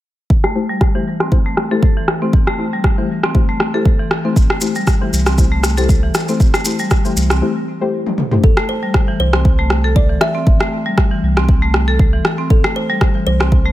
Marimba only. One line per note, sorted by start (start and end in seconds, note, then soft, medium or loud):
0.44 0.50 A3 medium
0.69 0.75 G3 medium
0.95 1.05 E3 medium
1.21 1.31 C4 medium
1.46 1.56 A3 medium
1.71 1.77 A4 medium
1.97 2.07 E3 medium
2.22 2.28 C4 medium
2.47 2.53 A3 medium
2.73 2.79 G3 medium
2.98 3.08 E3 medium
3.24 3.34 C4 medium
3.49 3.59 A3 medium
3.74 3.80 A4 medium
4.00 4.10 E3 medium
4.25 4.31 C4 medium
4.50 4.57 A3 medium
4.76 4.82 G3 loud
5.02 5.12 E3 medium
5.27 5.37 C4 medium
5.52 5.62 A3 loud
5.78 5.84 A4 loud
6.03 6.13 E3 medium
6.28 6.35 C4 medium
6.54 6.60 A3 medium
6.80 6.86 G3 loud
7.05 7.15 E3 medium
7.30 7.41 C4 medium
8.57 8.64 A3 medium
8.83 8.89 G3 medium
9.08 9.18 E3 medium
9.33 9.44 C4 medium
9.59 9.69 A3 loud
9.84 9.91 A4 loud
10.10 10.20 E3 medium
10.35 10.41 C4 medium
10.61 10.67 A3 medium
10.86 10.92 G3 loud
11.12 11.22 E3 medium
11.37 11.47 C4 medium
11.62 11.73 A3 loud
11.88 11.94 A4 loud
12.13 12.23 E3 medium
12.38 12.45 C4 medium
12.64 12.70 A3 loud
12.90 12.96 G3 loud
13.15 13.25 E3 medium
13.40 13.51 C4 medium
13.65 13.72 A3 loud